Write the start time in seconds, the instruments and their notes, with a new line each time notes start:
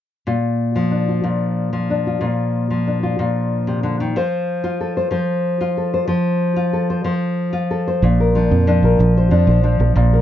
0.27 nylon-string guitar A#2 F4
0.76 nylon-string guitar F3
0.91 nylon-string guitar D4
1.08 nylon-string guitar F4
1.24 nylon-string guitar A#2, muted nylon-string guitar stroke
1.73 nylon-string guitar F3
1.90 nylon-string guitar D4
2.07 nylon-string guitar F4
2.21 nylon-string guitar A#2 F4
2.70 nylon-string guitar F3
2.87 nylon-string guitar D4
3.03 nylon-string guitar F4
3.19 nylon-string guitar A#2 F4
3.67 nylon-string guitar C3
3.83 nylon-string guitar D3
4.00 nylon-string guitar D#3
4.16 nylon-string guitar F3 C5
4.64 nylon-string guitar F4
4.81 nylon-string guitar A4
4.97 nylon-string guitar C5
5.11 nylon-string guitar F3 C5
5.61 nylon-string guitar F4
5.77 nylon-string guitar A4
5.94 nylon-string guitar C5
6.08 nylon-string guitar F3 C5
6.56 nylon-string guitar F4
6.73 nylon-string guitar A4
6.90 nylon-string guitar C5
7.04 nylon-string guitar F3 C5
7.53 nylon-string guitar F4
7.71 nylon-string guitar A4
7.87 nylon-string guitar C5
8.02 fingered electric bass A#1, nylon-string guitar A#2
8.20 nylon-string guitar A#4
8.35 nylon-string guitar F3 D4
8.51 fingered electric bass F2
8.67 nylon-string guitar F3 D4
8.83 fingered electric bass A#1, nylon-string guitar A#4
8.99 fingered electric bass A#1, muted nylon-string guitar stroke
9.17 nylon-string guitar C5
9.31 fingered electric bass F2, nylon-string guitar F3 D4
9.47 fingered electric bass A#1, nylon-string guitar C5
9.63 nylon-string guitar F3 D4
9.80 fingered electric bass A#1, muted nylon-string guitar stroke
9.96 fingered electric bass A#1, nylon-string guitar A#2
10.13 nylon-string guitar A#4